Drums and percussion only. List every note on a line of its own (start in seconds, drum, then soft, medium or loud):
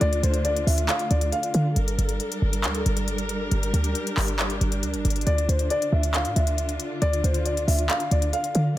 0.01 closed hi-hat medium
0.13 closed hi-hat medium
0.23 closed hi-hat medium
0.34 closed hi-hat medium
0.45 closed hi-hat medium
0.57 closed hi-hat medium
0.67 open hi-hat medium
0.78 closed hi-hat medium
0.89 clap loud
0.89 closed hi-hat medium
0.99 closed hi-hat medium
1.11 closed hi-hat medium
1.21 closed hi-hat medium
1.32 closed hi-hat medium
1.43 closed hi-hat medium
1.54 closed hi-hat medium
1.76 closed hi-hat medium
1.88 closed hi-hat medium
1.99 closed hi-hat medium
2.09 closed hi-hat medium
2.20 closed hi-hat medium
2.32 closed hi-hat medium
2.53 closed hi-hat medium
2.64 clap loud
2.64 closed hi-hat medium
2.75 closed hi-hat medium
2.86 closed hi-hat medium
2.97 closed hi-hat medium
3.08 closed hi-hat medium
3.18 closed hi-hat medium
3.29 closed hi-hat medium
3.51 closed hi-hat medium
3.63 closed hi-hat medium
3.74 closed hi-hat medium
3.84 closed hi-hat medium
3.95 closed hi-hat medium
4.07 closed hi-hat medium
4.17 clap loud
4.17 open hi-hat medium
4.28 closed hi-hat medium
4.39 clap loud
4.39 closed hi-hat medium
4.50 closed hi-hat medium
4.61 closed hi-hat medium
4.72 closed hi-hat medium
4.83 closed hi-hat medium
4.94 closed hi-hat medium
5.05 closed hi-hat medium
5.10 closed hi-hat medium
5.16 closed hi-hat soft
5.21 closed hi-hat soft
5.27 closed hi-hat medium
5.38 closed hi-hat medium
5.49 closed hi-hat medium
5.59 closed hi-hat medium
5.70 closed hi-hat medium
5.82 closed hi-hat medium
6.03 closed hi-hat medium
6.14 clap loud
6.14 closed hi-hat medium
6.25 closed hi-hat medium
6.36 closed hi-hat medium
6.47 closed hi-hat medium
6.58 closed hi-hat medium
6.69 closed hi-hat medium
6.80 closed hi-hat medium
7.02 closed hi-hat medium
7.13 closed hi-hat medium
7.24 closed hi-hat medium
7.34 closed hi-hat medium
7.46 closed hi-hat medium
7.57 closed hi-hat medium
7.68 open hi-hat medium
7.79 closed hi-hat medium
7.89 clap loud
7.89 closed hi-hat medium
8.00 closed hi-hat medium
8.11 closed hi-hat medium
8.22 closed hi-hat medium
8.33 closed hi-hat medium
8.44 closed hi-hat medium
8.55 closed hi-hat medium